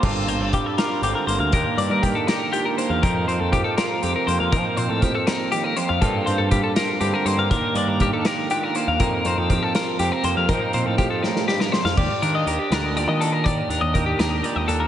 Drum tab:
CC |x-----------|------------|------------|------------|
HH |--x-x-x-x-x-|x-x-x-x-x-x-|x-x-x-x-x-x-|x-x-x-x-x-x-|
SD |------o-----|------o-----|------o-----|------o-----|
BD |o---o-------|o---o-------|o---o-------|o---o-------|

CC |------------|------------|------------|------------|
HH |x-x-x-x-x-x-|x-x-x-x-x-x-|x-x-x-x-x-x-|x-x-x-------|
SD |------o-----|------o-----|------o-----|------oooooo|
BD |o---o-------|o---o-------|o---o-------|o---o-------|

CC |x-----------|------------|
HH |--x-x-x-x-x-|x-x-x-x-x-x-|
SD |------o-----|------o-----|
BD |o-----------|o---o-------|